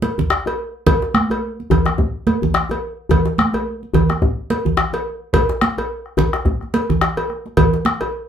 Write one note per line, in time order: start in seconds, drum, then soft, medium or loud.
0.02 cowbell soft
0.02 high conga medium
0.18 djembe bass medium
0.18 low conga medium
0.30 bombo rim medium
0.30 djembe slap medium
0.46 cowbell soft
0.46 djembe tone soft
0.46 high conga soft
0.87 bombo rim soft
0.87 bombo low medium
0.87 cowbell medium
0.87 low conga medium
0.87 djembe bass medium
1.02 djembe slap medium
1.14 bombo rim medium
1.14 djembe slap soft
1.14 high conga medium
1.30 cowbell soft
1.30 djembe tone medium
1.60 high conga soft
1.70 bombo rim soft
1.70 cowbell soft
1.70 djembe bass medium
1.70 low conga medium
1.86 bombo rim medium
1.86 djembe slap medium
1.86 high conga soft
1.98 bombo low medium
1.98 djembe tone medium
1.98 high conga soft
2.27 cowbell soft
2.27 high conga medium
2.42 djembe bass medium
2.42 low conga medium
2.54 bombo rim medium
2.54 djembe slap medium
2.69 cowbell soft
2.69 djembe tone medium
2.69 high conga soft
3.09 bombo rim soft
3.09 bombo low medium
3.09 cowbell medium
3.09 djembe bass medium
3.09 low conga medium
3.25 djembe slap medium
3.38 bombo rim medium
3.38 high conga medium
3.54 cowbell soft
3.54 djembe tone medium
3.83 high conga soft
3.94 bombo rim soft
3.94 cowbell soft
3.94 djembe bass medium
3.94 low conga medium
4.09 bombo rim medium
4.09 djembe slap medium
4.09 high conga soft
4.22 bombo low medium
4.22 djembe tone medium
4.22 high conga soft
4.50 cowbell soft
4.50 high conga medium
4.65 djembe bass medium
4.65 low conga medium
4.77 bombo rim medium
4.77 djembe slap medium
4.93 cowbell soft
4.93 djembe tone medium
4.93 high conga soft
5.33 bombo low medium
5.33 cowbell medium
5.33 high conga soft
5.33 low conga medium
5.33 djembe bass medium
5.49 bombo rim soft
5.49 djembe slap medium
5.61 bombo rim medium
5.61 high conga medium
5.78 cowbell soft
5.78 djembe tone medium
5.78 high conga soft
6.06 bombo rim soft
6.17 cowbell soft
6.17 djembe bass medium
6.17 low conga medium
6.33 bombo rim medium
6.33 djembe slap medium
6.45 bombo rim soft
6.45 bombo low medium
6.45 djembe tone medium
6.45 high conga soft
6.61 bombo rim soft
6.61 high conga soft
6.74 cowbell medium
6.74 high conga medium
6.89 bombo rim soft
6.89 high conga soft
6.89 djembe bass medium
6.89 low conga medium
7.01 bombo rim medium
7.01 djembe slap medium
7.17 bombo rim soft
7.17 cowbell soft
7.17 djembe tone medium
7.30 bombo rim soft
7.30 high conga soft
7.46 djembe slap soft
7.46 high conga soft
7.57 bombo rim soft
7.57 bombo low medium
7.57 cowbell medium
7.57 djembe bass medium
7.57 low conga medium
7.74 djembe slap medium
7.85 bombo rim medium
7.85 djembe slap soft
7.85 high conga medium
8.01 cowbell soft
8.01 djembe tone medium